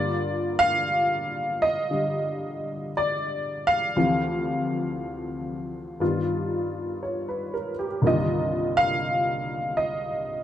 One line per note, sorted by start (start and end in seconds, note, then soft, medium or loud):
0.00 3.96 G2 soft
0.00 1.89 D3 soft
0.00 3.97 A#3 soft
0.00 3.97 F4 medium
0.00 0.55 D5 medium
0.59 1.64 F5 loud
1.62 2.91 D#5 medium
1.91 3.96 D3 soft
1.91 3.96 G3 soft
2.97 3.13 D5 medium
3.67 7.70 F5 loud
3.96 6.00 D2 medium
3.96 6.00 C3 medium
3.96 6.01 E3 medium
3.96 6.01 F3 medium
6.00 8.01 G2 soft
6.00 8.02 D#3 soft
6.00 8.05 G3 soft
6.00 8.05 B3 soft
6.00 8.05 F4 medium
7.03 7.52 C#5 soft
7.29 7.73 B4 soft
7.54 7.85 A#4 soft
7.79 8.14 G4 medium
8.02 10.43 C2 soft
8.02 10.43 G2 soft
8.02 10.43 D#3 soft
8.02 10.43 A#3 soft
8.06 10.43 D3 soft
8.06 10.43 F4 medium
8.06 8.78 D#5 medium
8.77 9.74 F5 loud
9.77 10.43 D#5 medium